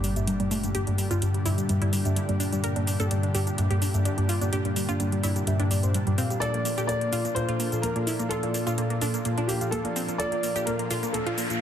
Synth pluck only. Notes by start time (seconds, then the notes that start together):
0.04 G3
0.27 G3
0.40 G3
0.51 A3
0.64 G3
0.75 G4
0.87 G3
0.98 G3
1.11 F4
1.22 G3
1.34 G3
1.46 E4
1.58 G3
1.69 G3
1.82 E4
1.93 G3
2.16 G3
2.29 G3
2.40 D4
2.53 G3
2.64 A#4
2.76 D4
2.87 D4
3.00 A4
3.11 D4
3.23 D4
3.35 G4
3.47 D4
3.58 D4
3.71 G4
3.82 D4
4.05 D4
4.18 D4
4.29 F4
4.41 D4
4.53 G4
4.65 G3
4.76 G3
4.89 F4
5.00 G3
5.12 G3
5.23 E4
5.36 G3
5.47 G3
5.60 D4
5.71 G3
5.94 G3
6.07 G3
6.18 C4
6.30 G3
6.42 A4
6.54 A#3
6.65 A#3
6.78 G4
6.89 A#3
7.01 A#3
7.13 F4
7.25 A#3
7.36 A#3
7.49 F4
7.60 A#3
7.83 A#3
7.96 A#3
8.07 E4
8.19 A#3
8.31 F4
8.43 A#3
8.54 A#3
8.67 F4
8.78 A#3
8.90 A#3
9.02 D4
9.14 A#3
9.25 A#3
9.38 D4
9.49 A#3
9.72 A#3
9.85 A#3
9.96 C4
10.08 A#3
10.20 A4
10.32 A#3
10.43 A#3
10.56 G4
10.67 A#3
10.79 A#3
10.91 F4
11.03 A#3
11.14 A#3
11.27 F4
11.38 A#3